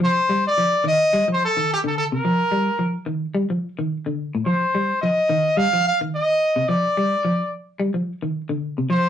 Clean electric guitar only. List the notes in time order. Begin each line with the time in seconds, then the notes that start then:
0.00 F3
0.29 G3
0.58 F3
0.84 D#3
1.13 G3
1.28 F3
1.57 D#3
1.84 D3
2.12 C3
2.25 F3
2.52 G3
2.79 F3
3.06 D#3
3.35 G3
3.50 F3
3.79 D#3
4.06 D3
4.35 A2
4.46 F3
4.75 G3
5.03 F3
5.29 D#3
5.57 G3
5.73 F3
6.01 D#3
6.56 C3
6.69 F3
6.97 G3
7.25 F3
7.80 G3
7.94 F3
8.22 D#3
8.49 D3
8.78 C3
8.90 F3